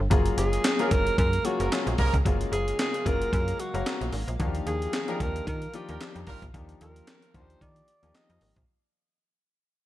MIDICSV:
0, 0, Header, 1, 7, 480
1, 0, Start_track
1, 0, Tempo, 535714
1, 99, Time_signature, 4, 2, 24, 8
1, 8833, End_track
2, 0, Start_track
2, 0, Title_t, "Alto saxophone"
2, 0, Program_c, 0, 65
2, 340, Note_on_c, 0, 68, 99
2, 821, Note_on_c, 0, 70, 113
2, 835, Note_off_c, 0, 68, 0
2, 1060, Note_off_c, 0, 70, 0
2, 1064, Note_on_c, 0, 70, 115
2, 1304, Note_on_c, 0, 66, 94
2, 1318, Note_off_c, 0, 70, 0
2, 1782, Note_off_c, 0, 66, 0
2, 2264, Note_on_c, 0, 68, 92
2, 2485, Note_off_c, 0, 68, 0
2, 2509, Note_on_c, 0, 68, 101
2, 2747, Note_on_c, 0, 70, 109
2, 2761, Note_off_c, 0, 68, 0
2, 2984, Note_off_c, 0, 70, 0
2, 2989, Note_on_c, 0, 70, 110
2, 3229, Note_on_c, 0, 66, 94
2, 3242, Note_off_c, 0, 70, 0
2, 3704, Note_off_c, 0, 66, 0
2, 4185, Note_on_c, 0, 68, 110
2, 4671, Note_on_c, 0, 70, 114
2, 4684, Note_off_c, 0, 68, 0
2, 4905, Note_off_c, 0, 70, 0
2, 4912, Note_on_c, 0, 70, 112
2, 5152, Note_on_c, 0, 67, 99
2, 5165, Note_off_c, 0, 70, 0
2, 5626, Note_off_c, 0, 67, 0
2, 6105, Note_on_c, 0, 70, 91
2, 6586, Note_on_c, 0, 72, 99
2, 6600, Note_off_c, 0, 70, 0
2, 6826, Note_on_c, 0, 74, 109
2, 6839, Note_off_c, 0, 72, 0
2, 7301, Note_on_c, 0, 75, 102
2, 7314, Note_off_c, 0, 74, 0
2, 7675, Note_off_c, 0, 75, 0
2, 8833, End_track
3, 0, Start_track
3, 0, Title_t, "Grand piano"
3, 0, Program_c, 1, 0
3, 91, Note_on_c, 1, 54, 82
3, 94, Note_on_c, 1, 58, 76
3, 96, Note_on_c, 1, 61, 70
3, 98, Note_on_c, 1, 65, 76
3, 99, Note_on_c, 1, 68, 96
3, 559, Note_off_c, 1, 54, 0
3, 561, Note_off_c, 1, 58, 0
3, 562, Note_off_c, 1, 61, 0
3, 563, Note_off_c, 1, 65, 0
3, 563, Note_off_c, 1, 68, 0
3, 712, Note_on_c, 1, 54, 86
3, 713, Note_on_c, 1, 58, 80
3, 715, Note_on_c, 1, 61, 76
3, 717, Note_on_c, 1, 65, 77
3, 719, Note_on_c, 1, 68, 96
3, 1173, Note_off_c, 1, 54, 0
3, 1173, Note_off_c, 1, 58, 0
3, 1174, Note_off_c, 1, 61, 0
3, 1175, Note_off_c, 1, 65, 0
3, 1176, Note_off_c, 1, 68, 0
3, 1295, Note_on_c, 1, 54, 88
3, 1296, Note_on_c, 1, 58, 77
3, 1298, Note_on_c, 1, 61, 76
3, 1299, Note_on_c, 1, 65, 77
3, 1301, Note_on_c, 1, 68, 96
3, 1489, Note_off_c, 1, 54, 0
3, 1489, Note_off_c, 1, 58, 0
3, 1490, Note_off_c, 1, 61, 0
3, 1491, Note_off_c, 1, 65, 0
3, 1492, Note_off_c, 1, 68, 0
3, 1540, Note_on_c, 1, 54, 78
3, 1541, Note_on_c, 1, 58, 74
3, 1542, Note_on_c, 1, 61, 69
3, 1546, Note_on_c, 1, 65, 72
3, 1546, Note_on_c, 1, 68, 92
3, 1922, Note_off_c, 1, 54, 0
3, 1923, Note_off_c, 1, 58, 0
3, 1923, Note_off_c, 1, 61, 0
3, 1925, Note_off_c, 1, 68, 0
3, 1926, Note_off_c, 1, 65, 0
3, 2015, Note_on_c, 1, 54, 80
3, 2016, Note_on_c, 1, 58, 75
3, 2018, Note_on_c, 1, 61, 77
3, 2021, Note_on_c, 1, 65, 73
3, 2022, Note_on_c, 1, 68, 92
3, 2580, Note_off_c, 1, 54, 0
3, 2581, Note_off_c, 1, 58, 0
3, 2582, Note_off_c, 1, 61, 0
3, 2583, Note_off_c, 1, 65, 0
3, 2584, Note_off_c, 1, 68, 0
3, 2735, Note_on_c, 1, 54, 86
3, 2737, Note_on_c, 1, 58, 86
3, 2738, Note_on_c, 1, 61, 80
3, 2741, Note_on_c, 1, 68, 104
3, 2742, Note_on_c, 1, 65, 81
3, 3202, Note_off_c, 1, 54, 0
3, 3202, Note_off_c, 1, 58, 0
3, 3203, Note_off_c, 1, 61, 0
3, 3204, Note_off_c, 1, 68, 0
3, 3205, Note_off_c, 1, 65, 0
3, 3350, Note_on_c, 1, 54, 87
3, 3352, Note_on_c, 1, 58, 82
3, 3353, Note_on_c, 1, 61, 80
3, 3355, Note_on_c, 1, 77, 75
3, 3356, Note_on_c, 1, 70, 97
3, 3811, Note_off_c, 1, 54, 0
3, 3812, Note_off_c, 1, 58, 0
3, 3813, Note_off_c, 1, 61, 0
3, 3814, Note_off_c, 1, 77, 0
3, 3815, Note_off_c, 1, 70, 0
3, 3936, Note_on_c, 1, 53, 82
3, 3938, Note_on_c, 1, 58, 78
3, 3940, Note_on_c, 1, 62, 79
3, 3940, Note_on_c, 1, 63, 78
3, 3943, Note_on_c, 1, 66, 76
3, 4001, Note_on_c, 1, 67, 92
3, 4006, Note_off_c, 1, 66, 0
3, 4402, Note_off_c, 1, 53, 0
3, 4403, Note_off_c, 1, 58, 0
3, 4404, Note_off_c, 1, 62, 0
3, 4404, Note_off_c, 1, 63, 0
3, 4434, Note_off_c, 1, 67, 0
3, 4551, Note_on_c, 1, 53, 87
3, 4553, Note_on_c, 1, 58, 76
3, 4555, Note_on_c, 1, 62, 82
3, 4556, Note_on_c, 1, 63, 79
3, 4558, Note_on_c, 1, 67, 101
3, 5012, Note_off_c, 1, 53, 0
3, 5013, Note_off_c, 1, 58, 0
3, 5014, Note_off_c, 1, 62, 0
3, 5015, Note_off_c, 1, 63, 0
3, 5016, Note_off_c, 1, 67, 0
3, 5139, Note_on_c, 1, 53, 85
3, 5140, Note_on_c, 1, 58, 77
3, 5142, Note_on_c, 1, 62, 87
3, 5145, Note_on_c, 1, 63, 82
3, 5147, Note_on_c, 1, 65, 103
3, 5331, Note_off_c, 1, 53, 0
3, 5331, Note_off_c, 1, 58, 0
3, 5332, Note_off_c, 1, 62, 0
3, 5334, Note_off_c, 1, 63, 0
3, 5335, Note_off_c, 1, 65, 0
3, 5376, Note_on_c, 1, 53, 86
3, 5381, Note_on_c, 1, 58, 76
3, 5381, Note_on_c, 1, 62, 77
3, 5382, Note_on_c, 1, 63, 72
3, 5386, Note_on_c, 1, 67, 89
3, 5761, Note_off_c, 1, 53, 0
3, 5763, Note_off_c, 1, 58, 0
3, 5763, Note_off_c, 1, 62, 0
3, 5764, Note_off_c, 1, 63, 0
3, 5765, Note_off_c, 1, 67, 0
3, 5855, Note_on_c, 1, 53, 77
3, 5856, Note_on_c, 1, 58, 75
3, 5858, Note_on_c, 1, 62, 76
3, 5859, Note_on_c, 1, 63, 76
3, 5863, Note_on_c, 1, 67, 95
3, 6420, Note_off_c, 1, 53, 0
3, 6421, Note_off_c, 1, 58, 0
3, 6422, Note_off_c, 1, 62, 0
3, 6423, Note_off_c, 1, 63, 0
3, 6424, Note_off_c, 1, 67, 0
3, 6577, Note_on_c, 1, 53, 88
3, 6578, Note_on_c, 1, 58, 75
3, 6581, Note_on_c, 1, 62, 80
3, 6584, Note_on_c, 1, 63, 82
3, 6584, Note_on_c, 1, 66, 76
3, 6644, Note_on_c, 1, 67, 97
3, 6647, Note_off_c, 1, 66, 0
3, 7042, Note_off_c, 1, 53, 0
3, 7043, Note_off_c, 1, 58, 0
3, 7044, Note_off_c, 1, 62, 0
3, 7046, Note_off_c, 1, 63, 0
3, 7076, Note_off_c, 1, 67, 0
3, 7190, Note_on_c, 1, 53, 83
3, 7191, Note_on_c, 1, 58, 74
3, 7193, Note_on_c, 1, 65, 83
3, 7196, Note_on_c, 1, 63, 79
3, 7199, Note_on_c, 1, 67, 98
3, 7651, Note_off_c, 1, 53, 0
3, 7652, Note_off_c, 1, 58, 0
3, 7653, Note_off_c, 1, 65, 0
3, 7654, Note_off_c, 1, 63, 0
3, 7656, Note_off_c, 1, 67, 0
3, 8833, End_track
4, 0, Start_track
4, 0, Title_t, "Horn section"
4, 0, Program_c, 2, 61
4, 712, Note_on_c, 2, 53, 78
4, 713, Note_on_c, 2, 61, 80
4, 714, Note_on_c, 2, 58, 83
4, 714, Note_on_c, 2, 70, 90
4, 803, Note_off_c, 2, 53, 0
4, 803, Note_off_c, 2, 61, 0
4, 804, Note_off_c, 2, 58, 0
4, 804, Note_off_c, 2, 70, 0
4, 1432, Note_on_c, 2, 61, 88
4, 1433, Note_on_c, 2, 53, 87
4, 1433, Note_on_c, 2, 58, 88
4, 1433, Note_on_c, 2, 70, 95
4, 1523, Note_off_c, 2, 53, 0
4, 1523, Note_off_c, 2, 58, 0
4, 1523, Note_off_c, 2, 61, 0
4, 1523, Note_off_c, 2, 70, 0
4, 1779, Note_on_c, 2, 61, 103
4, 1780, Note_on_c, 2, 53, 100
4, 1780, Note_on_c, 2, 58, 104
4, 1780, Note_on_c, 2, 70, 113
4, 1932, Note_off_c, 2, 61, 0
4, 1933, Note_off_c, 2, 53, 0
4, 1933, Note_off_c, 2, 58, 0
4, 1933, Note_off_c, 2, 70, 0
4, 4556, Note_on_c, 2, 58, 90
4, 4556, Note_on_c, 2, 70, 97
4, 4557, Note_on_c, 2, 55, 86
4, 4557, Note_on_c, 2, 65, 77
4, 4645, Note_off_c, 2, 58, 0
4, 4645, Note_off_c, 2, 70, 0
4, 4646, Note_off_c, 2, 55, 0
4, 4646, Note_off_c, 2, 65, 0
4, 5276, Note_on_c, 2, 65, 90
4, 5277, Note_on_c, 2, 55, 89
4, 5278, Note_on_c, 2, 58, 94
4, 5278, Note_on_c, 2, 70, 102
4, 5365, Note_off_c, 2, 65, 0
4, 5366, Note_off_c, 2, 55, 0
4, 5366, Note_off_c, 2, 58, 0
4, 5366, Note_off_c, 2, 70, 0
4, 5620, Note_on_c, 2, 58, 107
4, 5620, Note_on_c, 2, 65, 98
4, 5620, Note_on_c, 2, 70, 116
4, 5622, Note_on_c, 2, 55, 102
4, 5773, Note_off_c, 2, 58, 0
4, 5773, Note_off_c, 2, 65, 0
4, 5773, Note_off_c, 2, 70, 0
4, 5774, Note_off_c, 2, 55, 0
4, 8833, End_track
5, 0, Start_track
5, 0, Title_t, "Analog synth pad"
5, 0, Program_c, 3, 89
5, 92, Note_on_c, 3, 58, 73
5, 93, Note_on_c, 3, 54, 72
5, 94, Note_on_c, 3, 49, 78
5, 94, Note_on_c, 3, 56, 72
5, 94, Note_on_c, 3, 77, 89
5, 3900, Note_off_c, 3, 54, 0
5, 3901, Note_off_c, 3, 49, 0
5, 3901, Note_off_c, 3, 56, 0
5, 3934, Note_on_c, 3, 51, 78
5, 3935, Note_on_c, 3, 53, 71
5, 3935, Note_on_c, 3, 65, 70
5, 7740, Note_off_c, 3, 58, 0
5, 7741, Note_off_c, 3, 51, 0
5, 7741, Note_off_c, 3, 65, 0
5, 7741, Note_off_c, 3, 77, 0
5, 7742, Note_off_c, 3, 53, 0
5, 8833, End_track
6, 0, Start_track
6, 0, Title_t, "FM bass"
6, 0, Program_c, 4, 39
6, 97, Note_on_c, 4, 30, 114
6, 285, Note_off_c, 4, 30, 0
6, 337, Note_on_c, 4, 30, 93
6, 525, Note_off_c, 4, 30, 0
6, 818, Note_on_c, 4, 30, 90
6, 1006, Note_off_c, 4, 30, 0
6, 1059, Note_on_c, 4, 42, 114
6, 1246, Note_off_c, 4, 42, 0
6, 1433, Note_on_c, 4, 30, 97
6, 1515, Note_off_c, 4, 30, 0
6, 1673, Note_on_c, 4, 34, 99
6, 1756, Note_off_c, 4, 34, 0
6, 1780, Note_on_c, 4, 36, 91
6, 1884, Note_off_c, 4, 36, 0
6, 1913, Note_on_c, 4, 37, 86
6, 1996, Note_off_c, 4, 37, 0
6, 2020, Note_on_c, 4, 30, 110
6, 2207, Note_off_c, 4, 30, 0
6, 2256, Note_on_c, 4, 30, 104
6, 2444, Note_off_c, 4, 30, 0
6, 2742, Note_on_c, 4, 30, 90
6, 2928, Note_off_c, 4, 30, 0
6, 2982, Note_on_c, 4, 42, 110
6, 3168, Note_off_c, 4, 42, 0
6, 3352, Note_on_c, 4, 30, 108
6, 3435, Note_off_c, 4, 30, 0
6, 3594, Note_on_c, 4, 34, 89
6, 3676, Note_off_c, 4, 34, 0
6, 3696, Note_on_c, 4, 32, 93
6, 3802, Note_off_c, 4, 32, 0
6, 3832, Note_on_c, 4, 34, 95
6, 3915, Note_off_c, 4, 34, 0
6, 3939, Note_on_c, 4, 39, 115
6, 4127, Note_off_c, 4, 39, 0
6, 4180, Note_on_c, 4, 39, 104
6, 4367, Note_off_c, 4, 39, 0
6, 4662, Note_on_c, 4, 39, 90
6, 4848, Note_off_c, 4, 39, 0
6, 4900, Note_on_c, 4, 51, 115
6, 5087, Note_off_c, 4, 51, 0
6, 5278, Note_on_c, 4, 39, 97
6, 5359, Note_off_c, 4, 39, 0
6, 5516, Note_on_c, 4, 41, 96
6, 5598, Note_off_c, 4, 41, 0
6, 5619, Note_on_c, 4, 32, 92
6, 5724, Note_off_c, 4, 32, 0
6, 5754, Note_on_c, 4, 34, 92
6, 5836, Note_off_c, 4, 34, 0
6, 5860, Note_on_c, 4, 39, 105
6, 6047, Note_off_c, 4, 39, 0
6, 6104, Note_on_c, 4, 39, 105
6, 6289, Note_off_c, 4, 39, 0
6, 6581, Note_on_c, 4, 39, 98
6, 6767, Note_off_c, 4, 39, 0
6, 6822, Note_on_c, 4, 51, 110
6, 7008, Note_off_c, 4, 51, 0
6, 7195, Note_on_c, 4, 39, 90
6, 7277, Note_off_c, 4, 39, 0
6, 7433, Note_on_c, 4, 41, 105
6, 7516, Note_off_c, 4, 41, 0
6, 7540, Note_on_c, 4, 32, 99
6, 7645, Note_off_c, 4, 32, 0
6, 7674, Note_on_c, 4, 34, 99
6, 7756, Note_off_c, 4, 34, 0
6, 8833, End_track
7, 0, Start_track
7, 0, Title_t, "Drums"
7, 98, Note_on_c, 9, 36, 102
7, 98, Note_on_c, 9, 42, 91
7, 188, Note_off_c, 9, 36, 0
7, 188, Note_off_c, 9, 42, 0
7, 229, Note_on_c, 9, 42, 53
7, 319, Note_off_c, 9, 42, 0
7, 338, Note_on_c, 9, 42, 83
7, 428, Note_off_c, 9, 42, 0
7, 475, Note_on_c, 9, 42, 54
7, 564, Note_off_c, 9, 42, 0
7, 575, Note_on_c, 9, 42, 107
7, 579, Note_on_c, 9, 38, 108
7, 583, Note_on_c, 9, 39, 89
7, 665, Note_off_c, 9, 42, 0
7, 668, Note_off_c, 9, 38, 0
7, 673, Note_off_c, 9, 39, 0
7, 710, Note_on_c, 9, 42, 51
7, 799, Note_off_c, 9, 42, 0
7, 817, Note_on_c, 9, 42, 78
7, 818, Note_on_c, 9, 36, 94
7, 907, Note_off_c, 9, 42, 0
7, 908, Note_off_c, 9, 36, 0
7, 956, Note_on_c, 9, 42, 48
7, 1045, Note_off_c, 9, 42, 0
7, 1059, Note_on_c, 9, 36, 115
7, 1061, Note_on_c, 9, 42, 94
7, 1149, Note_off_c, 9, 36, 0
7, 1151, Note_off_c, 9, 42, 0
7, 1193, Note_on_c, 9, 42, 54
7, 1282, Note_off_c, 9, 42, 0
7, 1297, Note_on_c, 9, 42, 77
7, 1386, Note_off_c, 9, 42, 0
7, 1433, Note_on_c, 9, 42, 48
7, 1523, Note_off_c, 9, 42, 0
7, 1542, Note_on_c, 9, 42, 89
7, 1544, Note_on_c, 9, 38, 127
7, 1548, Note_on_c, 9, 39, 105
7, 1631, Note_off_c, 9, 42, 0
7, 1634, Note_off_c, 9, 38, 0
7, 1638, Note_off_c, 9, 39, 0
7, 1675, Note_on_c, 9, 42, 52
7, 1765, Note_off_c, 9, 42, 0
7, 1776, Note_on_c, 9, 46, 71
7, 1779, Note_on_c, 9, 36, 94
7, 1866, Note_off_c, 9, 46, 0
7, 1869, Note_off_c, 9, 36, 0
7, 1914, Note_on_c, 9, 36, 88
7, 1917, Note_on_c, 9, 42, 55
7, 2004, Note_off_c, 9, 36, 0
7, 2007, Note_off_c, 9, 42, 0
7, 2021, Note_on_c, 9, 36, 99
7, 2023, Note_on_c, 9, 42, 89
7, 2111, Note_off_c, 9, 36, 0
7, 2113, Note_off_c, 9, 42, 0
7, 2157, Note_on_c, 9, 42, 52
7, 2247, Note_off_c, 9, 42, 0
7, 2264, Note_on_c, 9, 42, 84
7, 2354, Note_off_c, 9, 42, 0
7, 2400, Note_on_c, 9, 42, 53
7, 2490, Note_off_c, 9, 42, 0
7, 2499, Note_on_c, 9, 42, 106
7, 2503, Note_on_c, 9, 38, 109
7, 2507, Note_on_c, 9, 39, 87
7, 2589, Note_off_c, 9, 42, 0
7, 2593, Note_off_c, 9, 38, 0
7, 2597, Note_off_c, 9, 39, 0
7, 2637, Note_on_c, 9, 42, 54
7, 2726, Note_off_c, 9, 42, 0
7, 2742, Note_on_c, 9, 36, 93
7, 2745, Note_on_c, 9, 42, 80
7, 2831, Note_off_c, 9, 36, 0
7, 2834, Note_off_c, 9, 42, 0
7, 2881, Note_on_c, 9, 42, 54
7, 2971, Note_off_c, 9, 42, 0
7, 2982, Note_on_c, 9, 36, 121
7, 2986, Note_on_c, 9, 42, 94
7, 3072, Note_off_c, 9, 36, 0
7, 3076, Note_off_c, 9, 42, 0
7, 3116, Note_on_c, 9, 42, 56
7, 3206, Note_off_c, 9, 42, 0
7, 3222, Note_on_c, 9, 42, 78
7, 3311, Note_off_c, 9, 42, 0
7, 3356, Note_on_c, 9, 42, 47
7, 3445, Note_off_c, 9, 42, 0
7, 3461, Note_on_c, 9, 42, 90
7, 3463, Note_on_c, 9, 38, 121
7, 3468, Note_on_c, 9, 39, 93
7, 3551, Note_off_c, 9, 42, 0
7, 3553, Note_off_c, 9, 38, 0
7, 3557, Note_off_c, 9, 39, 0
7, 3596, Note_on_c, 9, 42, 50
7, 3686, Note_off_c, 9, 42, 0
7, 3696, Note_on_c, 9, 46, 71
7, 3786, Note_off_c, 9, 46, 0
7, 3835, Note_on_c, 9, 42, 51
7, 3925, Note_off_c, 9, 42, 0
7, 3939, Note_on_c, 9, 42, 87
7, 3940, Note_on_c, 9, 36, 103
7, 4029, Note_off_c, 9, 42, 0
7, 4030, Note_off_c, 9, 36, 0
7, 4073, Note_on_c, 9, 42, 50
7, 4163, Note_off_c, 9, 42, 0
7, 4181, Note_on_c, 9, 42, 76
7, 4271, Note_off_c, 9, 42, 0
7, 4318, Note_on_c, 9, 42, 52
7, 4408, Note_off_c, 9, 42, 0
7, 4418, Note_on_c, 9, 42, 112
7, 4421, Note_on_c, 9, 38, 114
7, 4426, Note_on_c, 9, 39, 92
7, 4507, Note_off_c, 9, 42, 0
7, 4511, Note_off_c, 9, 38, 0
7, 4515, Note_off_c, 9, 39, 0
7, 4552, Note_on_c, 9, 42, 52
7, 4641, Note_off_c, 9, 42, 0
7, 4662, Note_on_c, 9, 36, 94
7, 4662, Note_on_c, 9, 42, 79
7, 4751, Note_off_c, 9, 36, 0
7, 4752, Note_off_c, 9, 42, 0
7, 4801, Note_on_c, 9, 42, 50
7, 4891, Note_off_c, 9, 42, 0
7, 4902, Note_on_c, 9, 36, 125
7, 4904, Note_on_c, 9, 42, 95
7, 4991, Note_off_c, 9, 36, 0
7, 4994, Note_off_c, 9, 42, 0
7, 5034, Note_on_c, 9, 42, 57
7, 5123, Note_off_c, 9, 42, 0
7, 5139, Note_on_c, 9, 42, 82
7, 5228, Note_off_c, 9, 42, 0
7, 5274, Note_on_c, 9, 42, 49
7, 5364, Note_off_c, 9, 42, 0
7, 5382, Note_on_c, 9, 42, 94
7, 5384, Note_on_c, 9, 38, 127
7, 5388, Note_on_c, 9, 39, 105
7, 5471, Note_off_c, 9, 42, 0
7, 5474, Note_off_c, 9, 38, 0
7, 5478, Note_off_c, 9, 39, 0
7, 5516, Note_on_c, 9, 42, 50
7, 5606, Note_off_c, 9, 42, 0
7, 5615, Note_on_c, 9, 46, 72
7, 5620, Note_on_c, 9, 36, 92
7, 5705, Note_off_c, 9, 46, 0
7, 5709, Note_off_c, 9, 36, 0
7, 5754, Note_on_c, 9, 36, 96
7, 5755, Note_on_c, 9, 42, 55
7, 5844, Note_off_c, 9, 36, 0
7, 5845, Note_off_c, 9, 42, 0
7, 5861, Note_on_c, 9, 36, 106
7, 5863, Note_on_c, 9, 42, 84
7, 5951, Note_off_c, 9, 36, 0
7, 5952, Note_off_c, 9, 42, 0
7, 5993, Note_on_c, 9, 42, 52
7, 6082, Note_off_c, 9, 42, 0
7, 6101, Note_on_c, 9, 42, 80
7, 6191, Note_off_c, 9, 42, 0
7, 6237, Note_on_c, 9, 42, 57
7, 6327, Note_off_c, 9, 42, 0
7, 6337, Note_on_c, 9, 42, 115
7, 6341, Note_on_c, 9, 38, 109
7, 6345, Note_on_c, 9, 39, 96
7, 6427, Note_off_c, 9, 42, 0
7, 6431, Note_off_c, 9, 38, 0
7, 6435, Note_off_c, 9, 39, 0
7, 6473, Note_on_c, 9, 42, 54
7, 6562, Note_off_c, 9, 42, 0
7, 6581, Note_on_c, 9, 36, 95
7, 6581, Note_on_c, 9, 42, 75
7, 6671, Note_off_c, 9, 36, 0
7, 6671, Note_off_c, 9, 42, 0
7, 6719, Note_on_c, 9, 42, 49
7, 6809, Note_off_c, 9, 42, 0
7, 6822, Note_on_c, 9, 36, 122
7, 6826, Note_on_c, 9, 42, 86
7, 6911, Note_off_c, 9, 36, 0
7, 6915, Note_off_c, 9, 42, 0
7, 6953, Note_on_c, 9, 42, 58
7, 7043, Note_off_c, 9, 42, 0
7, 7060, Note_on_c, 9, 42, 77
7, 7149, Note_off_c, 9, 42, 0
7, 7194, Note_on_c, 9, 42, 47
7, 7283, Note_off_c, 9, 42, 0
7, 7299, Note_on_c, 9, 42, 90
7, 7301, Note_on_c, 9, 38, 122
7, 7305, Note_on_c, 9, 39, 98
7, 7388, Note_off_c, 9, 42, 0
7, 7391, Note_off_c, 9, 38, 0
7, 7395, Note_off_c, 9, 39, 0
7, 7434, Note_on_c, 9, 42, 52
7, 7523, Note_off_c, 9, 42, 0
7, 7536, Note_on_c, 9, 46, 77
7, 7625, Note_off_c, 9, 46, 0
7, 7673, Note_on_c, 9, 36, 89
7, 7674, Note_on_c, 9, 42, 49
7, 7763, Note_off_c, 9, 36, 0
7, 7764, Note_off_c, 9, 42, 0
7, 8833, End_track
0, 0, End_of_file